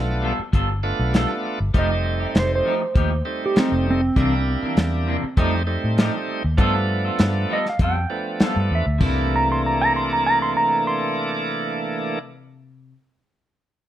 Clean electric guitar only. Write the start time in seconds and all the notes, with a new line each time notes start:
0.22 G3 B3 F4 A4
0.39 muted clean electric guitar stroke
0.53 G3 B3 F4 A4
0.69 muted clean electric guitar stroke
0.83 muted clean electric guitar stroke
1.13 G3 B3 F4 A4
1.29 muted clean electric guitar stroke
1.44 muted clean electric guitar stroke
1.74 F3 A3 D#4 G4
1.90 muted clean electric guitar stroke
2.04 muted clean electric guitar stroke
2.20 A3 D#4 G4
2.35 muted clean electric guitar stroke
2.65 F3 A3 D#4 G4
2.81 muted clean electric guitar stroke
2.95 F3 A3 D#4 G4
3.11 muted clean electric guitar stroke
3.26 muted clean electric guitar stroke
3.55 F3 A3 D#4 G4
3.72 muted clean electric guitar stroke
3.86 muted clean electric guitar stroke
4.16 C3 E3 A#3 D4
4.33 muted clean electric guitar stroke
4.47 muted clean electric guitar stroke
4.62 E3 A#3 D4
4.77 muted clean electric guitar stroke
5.06 C3 E3 A#3 D4
5.23 muted clean electric guitar stroke
5.37 F3 A3 D#4 G4
5.53 muted clean electric guitar stroke
5.68 muted clean electric guitar stroke
5.97 F3 A3 D#4 G4
6.14 muted clean electric guitar stroke
6.28 muted clean electric guitar stroke
6.58 G3 B3 F4 A4
6.75 muted clean electric guitar stroke
6.89 muted clean electric guitar stroke
7.05 B3 F4 A4
7.19 muted clean electric guitar stroke
7.49 G3 B3 F4 A4
7.65 muted clean electric guitar stroke
7.80 G3 B3 F4 A4
7.96 muted clean electric guitar stroke
8.10 muted clean electric guitar stroke
8.40 G3 B3 F4 A4
8.56 muted clean electric guitar stroke
8.71 muted clean electric guitar stroke
8.99 C3
9.05 E4